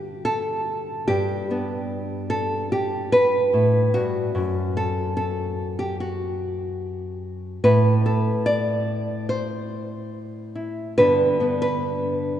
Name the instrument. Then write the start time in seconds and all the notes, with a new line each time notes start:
nylon-string guitar
Already playing: G2 D3 F#4 G4
0.25 A4
1.08 G2 G4
1.51 B3 D4
2.30 A4
2.72 G4
3.12 B4
3.53 A2
3.94 G2 F#4
4.35 F#2
4.77 A4
5.17 A4
5.79 G4
6.00 F#4
7.64 A2 B4
8.06 A4
8.46 D5
9.29 C5
10.55 E4
10.98 G2 D3 B3 D4 B4
11.40 B3 D4
11.62 B4